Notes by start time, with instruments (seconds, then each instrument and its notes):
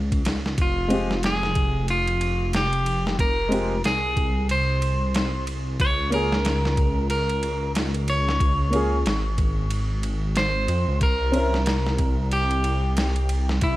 Already playing: detuned saw bass C#2
0.12 kick, ride
0.25 detuned saw bass C#2, snare, ride
0.46 snare
0.58 detuned saw bass F1, clean electric guitar F4, kick, ride
0.88 upright piano G#3 C4 F4, ride
0.93 upright piano G4
1.11 snare
1.23 clean electric guitar G#4, snare, ride
1.43 snare
1.55 kick, ride
1.88 clean electric guitar F4, ride
2.07 ride
2.21 ride
2.53 clean electric guitar G4, snare, ride
2.73 ride
2.86 ride
3.07 snare
3.19 detuned saw bass F1, clean electric guitar A#4, kick, ride
3.49 upright piano G#3 C4 F4, ride
3.54 upright piano G4
3.84 detuned saw bass C2, clean electric guitar G#4, snare, ride
4.17 kick, ride
4.49 clean electric guitar C5, ride
4.82 ride
5.14 snare, ride
5.47 ride
5.80 detuned saw bass C#2, clean electric guitar C#5, kick, ride
6.10 upright piano A#3 C#4 F4, clean electric guitar A#4, ride
6.15 upright piano G#4
6.32 snare
6.45 snare, ride
6.65 snare
6.77 kick, ride
7.10 clean electric guitar A#4, ride
7.29 ride
7.43 ride
7.75 snare, ride
7.94 ride
8.08 clean electric guitar C#5, ride
8.29 snare
8.40 detuned saw bass C#2, kick, ride
8.70 upright piano A#3 C#4 F4, ride
8.75 upright piano G#4
9.06 detuned saw bass G#1, snare, ride
9.38 kick, ride
9.71 ride
10.03 ride
10.36 clean electric guitar C5, snare, ride
10.68 detuned saw bass F2, ride
10.88 detuned saw bass C#2
11.01 detuned saw bass C2, clean electric guitar A#4, kick, ride
11.32 upright piano C4 C#4 E4, ride
11.37 upright piano A#4
11.54 snare
11.66 snare, ride
11.87 snare
11.99 kick, ride
12.31 clean electric guitar G4, ride
12.51 ride
12.64 ride
12.97 snare, ride
13.16 ride
13.29 ride
13.49 snare
13.61 detuned saw bass C2, clean electric guitar E4, kick, ride